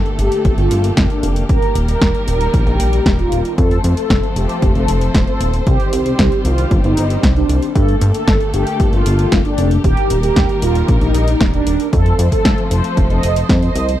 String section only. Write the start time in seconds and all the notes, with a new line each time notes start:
Already playing: D3 A3 A#3 G4 A4
1.49 D#3 G3 A#4
3.58 F3 A3 C4 A4 C5
5.67 D#3 G3 G4
7.75 D3 A3 A#3 G4 A4
9.84 D#3 G3 A#3 A#4
11.93 F3 A3 C4 A4 C5